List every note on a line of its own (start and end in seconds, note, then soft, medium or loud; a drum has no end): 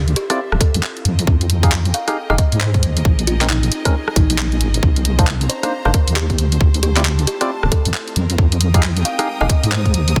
0.00 0.14 D2 loud
0.00 3.01 C4 medium
0.00 1.82 C5 medium
0.00 1.05 E5 medium
0.08 closed hi-hat soft
0.16 0.25 G4 medium
0.16 closed hi-hat loud
0.30 0.40 C4 medium
0.30 0.40 E4 medium
0.30 0.40 F4 medium
0.30 0.35 G4 medium
0.30 0.40 D5 loud
0.30 cross-stick medium
0.30 closed hi-hat medium
0.52 0.60 D1 medium
0.52 cross-stick medium
0.61 0.97 A4 medium
0.61 kick loud
0.61 closed hi-hat loud
0.74 0.82 F2 medium
0.74 closed hi-hat medium
0.83 clap loud
0.97 closed hi-hat soft
1.05 1.25 F2 loud
1.05 3.03 D#4 medium
1.05 3.03 G4 medium
1.05 4.79 G#4 medium
1.05 5.46 A#4 medium
1.05 closed hi-hat loud
1.09 5.46 D#5 medium
1.19 closed hi-hat medium
1.27 1.92 F2 loud
1.27 kick loud
1.41 3.05 G5 medium
1.41 closed hi-hat medium
1.50 closed hi-hat loud
1.63 1.73 D#4 medium
1.63 1.73 G4 medium
1.63 1.73 G#4 medium
1.63 1.73 F5 medium
1.63 kick loud
1.63 closed hi-hat medium
1.72 clap loud
1.85 closed hi-hat soft
1.94 2.27 F5 medium
1.94 closed hi-hat loud
2.08 2.17 D#4 medium
2.08 2.17 G4 medium
2.08 2.17 G#4 medium
2.08 2.17 F5 medium
2.08 cross-stick medium
2.08 closed hi-hat medium
2.30 2.37 F1 medium
2.30 2.36 D#4 medium
2.30 2.36 G4 medium
2.30 2.36 G#4 medium
2.30 2.35 D#5 medium
2.30 2.36 F5 loud
2.30 cross-stick medium
2.38 2.47 D#5 medium
2.38 kick loud
2.38 closed hi-hat loud
2.52 2.84 G#2 medium
2.52 closed hi-hat medium
2.61 2.75 C5 medium
2.61 clap loud
2.74 kick medium
2.74 closed hi-hat soft
2.83 3.03 D#2 loud
2.83 closed hi-hat loud
2.97 closed hi-hat medium
3.05 3.70 A#1 medium
3.05 kick loud
3.19 closed hi-hat soft
3.27 3.42 F4 medium
3.27 closed hi-hat medium
3.41 3.47 G#3 medium
3.41 3.47 C4 medium
3.41 3.47 C#4 medium
3.41 3.47 A#4 loud
3.41 clap medium
3.41 closed hi-hat medium
3.45 4.83 G#5 medium
3.50 3.94 D#4 medium
3.50 clap loud
3.63 closed hi-hat soft
3.72 closed hi-hat loud
3.85 3.95 G#3 medium
3.85 3.95 C4 medium
3.85 3.95 C#4 medium
3.85 3.95 A#4 loud
3.85 kick medium
3.85 cross-stick medium
3.85 closed hi-hat medium
4.08 cross-stick medium
4.16 4.62 A#1 medium
4.16 4.25 D#4 medium
4.16 kick loud
4.16 closed hi-hat loud
4.30 4.35 D#4 medium
4.30 closed hi-hat medium
4.38 clap loud
4.52 closed hi-hat soft
4.61 4.81 G#1 medium
4.61 closed hi-hat medium
4.74 closed hi-hat medium
4.83 5.48 C2 loud
4.83 8.98 C5 medium
4.83 kick loud
4.96 closed hi-hat medium
5.05 closed hi-hat loud
5.19 5.28 A#3 medium
5.19 5.28 D4 medium
5.19 5.28 D#4 medium
5.19 5.28 C5 medium
5.19 kick loud
5.19 closed hi-hat medium
5.27 clap loud
5.41 6.38 A#5 medium
5.41 closed hi-hat soft
5.49 5.83 C5 medium
5.49 closed hi-hat loud
5.63 5.73 A#3 medium
5.63 5.73 D4 medium
5.63 5.73 D#4 medium
5.63 5.73 C5 medium
5.63 cross-stick medium
5.63 closed hi-hat medium
5.85 5.93 G1 medium
5.85 5.91 A#3 medium
5.85 5.91 D4 medium
5.85 5.91 D#4 medium
5.85 5.91 A#4 medium
5.85 5.91 C5 loud
5.85 cross-stick medium
5.94 6.03 A#4 medium
5.94 kick loud
5.94 closed hi-hat loud
6.08 6.40 D#2 medium
6.08 closed hi-hat medium
6.16 6.31 G4 medium
6.16 clap loud
6.30 kick medium
6.30 closed hi-hat soft
6.38 6.58 D2 loud
6.38 closed hi-hat loud
6.52 closed hi-hat medium
6.61 7.26 D2 loud
6.61 kick loud
6.74 closed hi-hat medium
6.80 6.92 G4 medium
6.80 8.16 A5 medium
6.80 closed hi-hat loud
6.96 7.02 C4 medium
6.96 7.02 E4 medium
6.96 7.02 F4 medium
6.96 7.02 G4 medium
6.96 7.02 D5 loud
6.96 clap medium
6.96 closed hi-hat medium
7.05 clap loud
7.19 closed hi-hat soft
7.27 7.36 G4 medium
7.27 closed hi-hat loud
7.41 7.51 C4 medium
7.41 7.51 E4 medium
7.41 7.51 F4 medium
7.41 7.46 G4 medium
7.41 7.51 D5 loud
7.41 cross-stick medium
7.41 closed hi-hat medium
7.63 7.71 D1 medium
7.63 cross-stick medium
7.72 8.08 A4 medium
7.72 kick loud
7.72 closed hi-hat loud
7.85 7.93 F2 medium
7.85 closed hi-hat medium
7.94 clap loud
8.08 closed hi-hat soft
8.16 8.36 F2 loud
8.16 10.20 G#3 medium
8.16 10.20 C4 medium
8.16 10.14 D#4 medium
8.16 10.14 G4 medium
8.16 10.20 A#4 medium
8.16 closed hi-hat loud
8.30 closed hi-hat medium
8.38 9.03 F2 loud
8.38 kick loud
8.46 10.20 D#6 medium
8.52 closed hi-hat medium
8.61 closed hi-hat loud
8.72 8.84 D#4 medium
8.72 8.84 G4 medium
8.72 8.84 G#4 medium
8.72 8.84 F5 medium
8.72 10.16 G5 medium
8.72 kick loud
8.72 closed hi-hat medium
8.83 clap loud
8.97 closed hi-hat medium
9.05 9.38 F5 medium
9.05 closed hi-hat loud
9.19 9.28 D#4 medium
9.19 9.28 G4 medium
9.19 9.28 G#4 medium
9.19 9.28 F5 medium
9.19 cross-stick medium
9.19 closed hi-hat medium
9.41 9.48 F1 medium
9.41 9.47 D#4 medium
9.41 9.47 G4 medium
9.41 9.47 G#4 medium
9.41 9.46 D#5 medium
9.41 9.47 F5 loud
9.41 cross-stick medium
9.49 9.58 D#5 medium
9.49 kick loud
9.49 closed hi-hat loud
9.63 9.96 G#2 medium
9.63 closed hi-hat medium
9.72 9.86 C5 medium
9.72 clap loud
9.85 kick medium
9.85 closed hi-hat soft
9.94 10.14 D#2 loud
9.94 closed hi-hat loud
10.08 closed hi-hat medium
10.16 10.20 A#1 loud
10.16 kick loud